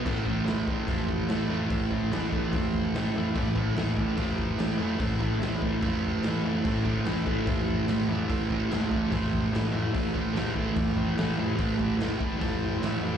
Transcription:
<<
  \new Staff \with { instrumentName = "Transistor combo organ" } { \time 4/4 \key a \minor \tempo 4 = 146 <e' a' c''>8 <e' a' c''>8 <e' a' c''>8 <e' a' c''>8 <e' a' c''>8 <e' a' c''>8 <e' a' c''>8 <e' a' c''>8 | <e' a' c''>8 <e' a' c''>8 <e' a' b'>8 <e' a' d''>8 <e' a' c''>8 <e' a' c''>8 <e' a' c''>8 <e' a' c''>8 | <e' a' d''>8 <e' a' c''>8 <e' a' c''>8 <e' a' d''>8 <e' a' c''>8 <e' a' c''>8 <e' a' c''>8 <e' a' c''>8 | <e' a' c''>8 <e' a' c''>8 <e' a' c''>8 <e' a' c''>8 <e' a' c''>8 <e' a' c''>8 <e' a' c''>8 <e' a' c''>8 |
<e' a' c''>8 <e' a' c''>8 <e' a' c''>8 <e' a' c''>8 <e' a' c''>8 <e' a' c''>8 <e' a' c''>8 <e' a' d''>8 | <e' a' c''>8 <e' a' c''>8 <e' a' c''>8 <e' a' d''>8 <e' a' c''>8 <e' a' c''>8 <e' a' c''>8 <e' a' c''>8 | <e' a' c''>8 <e' a' c''>8 <e' a' c''>8 <e' a' c''>8 <e' a' d''>8 <e' a' c''>8 <e' a' b'>8 <e' a' c''>8 | <e' a' c''>8 <e' a' d''>8 <e' a' c''>8 <e' a' b' c'''>8 <e' a' c'' a''>8 <e' a' c'' g''>8 <e' a' b' e''>8 <e' a' c'' d''>8 | }
  \new Staff \with { instrumentName = "Distorted electric guitar" } { \clef bass \time 4/4 \key a \minor <a, e a>8 <e a>8 <a, e a>8 <e a>8 <a, e a>4 <a, e a>8 <e a>8 | <a, e a>8 <e a>8 <a, e a>8 <e a>8 <a, e a>4 <a, e a>8 <e a>8 | <a, e a>8 <e a>8 <a, e a>8 <e a>8 <a, e a>4 <a, e a>8 <e a>8 | <a, e a>8 <e a>8 <a, e a>8 <e a>8 <a, e a>4 <a, e a>8 <e a>8 |
<a, e a>8 <e a>8 <a, e a>8 <e a>8 <a, e a>4 <a, e a>8 <e a>8 | <a, e a>8 <e a>8 <a, e a>8 <e a>8 <a, e a>4 <a, e a>8 <e a>8 | <a, e a>8 <e a>8 <a, e a>8 <e a>8 <a, e a>4 <a, e a>8 <e a>8 | <a, e a>8 <e a>8 <a, e a>8 <e a>8 <a, e a>4 <a, e a>8 <e a>8 | }
  \new Staff \with { instrumentName = "Picked electric bass" } { \clef bass \time 4/4 \key a \minor a,,4 e,4 f,4 a,8 f,8 | a,,4 e,4 f,4 a,8 f,8 | a,,4 e,4 f,4 a,8 f,8 | a,,4 e,4 f,4 a,8 f,8 |
a,,4 e,4 f,4 a,8 f,8 | a,,4 e,4 f,4 a,8 f,8 | a,,4 e,4 f,4 a,8 f,8 | a,,4 e,4 f,4 a,8 f,8 | }
  \new DrumStaff \with { instrumentName = "Drums" } \drummode { \time 4/4 <cymc bd>8 bd8 <hho sn>8 bd8 <hho bd>8 bd8 <hho sn>4 | <hho bd>8 bd8 <hho sn>8 bd8 <hho bd>8 bd8 <hho sn>4 | <hho bd>8 bd8 <hho sn>8 bd8 <hho bd>8 bd8 <hho sn>4 | <hho bd>8 bd8 <hho sn>8 bd8 <hho bd>4 <hho sn>4 |
<hho bd>8 bd8 <hho sn>8 bd8 <hho bd>8 bd8 <hho sn>4 | <hho bd>8 bd8 <hho sn>8 bd8 <hho bd>8 bd8 <hho sn>4 | <hho bd>8 bd8 <hho sn>8 bd8 <hho bd>8 bd8 <hho sn>4 | <hho bd>8 bd8 <hho sn>8 bd8 <hho bd>4 <hho sn>4 | }
>>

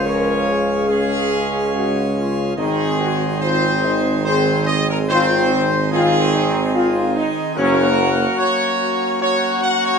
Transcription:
<<
  \new Staff \with { instrumentName = "Trumpet section" } { \time 3/4 \key aes \mixolydian \tempo 4 = 72 des''4 aes'4. r8 | aes'4 c''4 c''8 ees''16 bes'16 | c''4 aes'4. r8 | bes'4 des''4 des''8 ges''16 des''16 | }
  \new Staff \with { instrumentName = "French horn section" } { \time 3/4 \key aes \mixolydian bes'8 aes'4. ges'8 f'8 | ees'8 ges'8 f'8 ees'8 aes'4 | f'8 ees'8 f'8 ees'8 f'8 ees'8 | ges'2 ges'4 | }
  \new Staff \with { instrumentName = "Pipe organ" } { \time 3/4 \key aes \mixolydian <des aes aes' f''>2. | <ees c' ees' aes'>2.~ | <ees c' ees' aes'>2. | <ges bes des' ges'>2. | }
  \new Staff \with { instrumentName = "Trombone section" } { \time 3/4 \key aes \mixolydian <f des'>4 <aes des'>2 | <ees c'>4 <ees c'>4 <ees c'>4 | <ees c'>4 <ees c'>2 | <ges des'>8 r2 r8 | }
  \new Staff \with { instrumentName = "Tuba" } { \clef bass \time 3/4 \key aes \mixolydian des,2. | aes,,2.~ | aes,,2. | ges,,4 r2 | }
>>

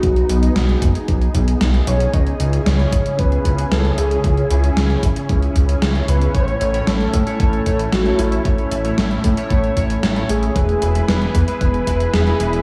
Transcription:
<<
  \new Staff \with { instrumentName = "Soft synth lead" } { \time 4/4 \key cis \minor \tempo 4 = 114 fis'4. r2 cis''8 | dis''4 cis''4 b'4 a'8 gis'8~ | gis'4. r2 b'8 | cis''4 a'4 a'4 fis'8 e'8~ |
e'4. r2 gis'8~ | gis'4 b'4 b'4 gis'4 | }
  \new Staff \with { instrumentName = "Analog polysynth" } { \time 4/4 \key cis \minor r1 | r1 | r1 | <a, a e' cis''>8. <a, a e' cis''>16 r8. <a, a e' cis''>8. <a, a e' cis''>16 r8 <a, a e' cis''>8. |
<a, a e' cis''>8. <a, a e' cis''>16 r8. <a, a e' cis''>8. <a, a e' cis''>16 r8 <a, a e' cis''>8. | <gis e' b'>8. <gis e' b'>16 r8. <gis e' b'>8. <gis e' b'>16 r8 <gis e' b'>8. | }
  \new Staff \with { instrumentName = "Analog synth pad" } { \time 4/4 \key cis \minor << { gis'1~ | gis'1~ | gis'1 | e'1~ |
e'1 | b'1 | } \\ { <b dis'>1 | <cis cis' e'>1~ | <cis cis' e'>1 | a1~ |
a1 | <e e' gis'>1 | } >> }
  \new Staff \with { instrumentName = "Analog synth bass" } { \clef bass \time 4/4 \key cis \minor b,,8 b,,8 b,,8 fis,,8 b,,8 b,,8 b,,8 b,,8 | cis,8 cis,8 cis,8 gis,,8 cis,8 cis,8 cis,8 cis,8 | cis,8 cis,8 cis,8 gis,,8 cis,8 cis,8 cis,8 cis,8 | a,,8 a,,8 a,,8 a,8 a,,8 a,,8 a,,8 a,,8 |
a,,8 a,,8 a,,8 a,8 a,,8 a,,8 a,,8 a,,8 | e,,8 e,,8 e,,8 e,8 e,,8 e,,8 e,,8 e,,8 | }
  \new DrumStaff \with { instrumentName = "Drums" } \drummode { \time 4/4 <hh bd>16 hh16 hh16 hh16 <hh sn>16 hh16 <hh bd>16 hh16 <hh bd>16 hh16 <hh bd>16 hh16 <hh sn>16 hh16 hh16 hh16 | <hh bd>16 hh16 hh16 hh16 <hh sn>16 hh16 <hh bd>16 hh16 <hh bd>16 hh16 <hh bd>16 hh16 <hh sn>16 hh16 hh16 hh16 | <hh bd>16 hh16 hh16 hh16 <hh sn>16 hh16 <hh bd>16 hh16 <hh bd>16 hh16 <hh bd>16 hh16 <hh sn>16 hh16 hh16 hh16 | <hh bd>16 hh16 hh16 hh16 <hh sn>16 hh16 <hh bd>16 hh16 <hh bd>16 hh16 <hh bd>16 hh16 <hh sn>16 hh16 hh16 hh16 |
<hh bd>16 hh16 hh16 hh16 <hh sn>16 hh16 <hh bd>16 hh16 <hh bd>16 hh16 <hh bd>16 hh16 <hh sn>16 hh16 hh16 hh16 | <hh bd>16 hh16 hh16 hh16 <hh sn>16 hh16 <hh bd>16 hh16 <hh bd>16 hh16 <hh bd>16 hh16 <hh sn>16 hh16 hh16 hh16 | }
>>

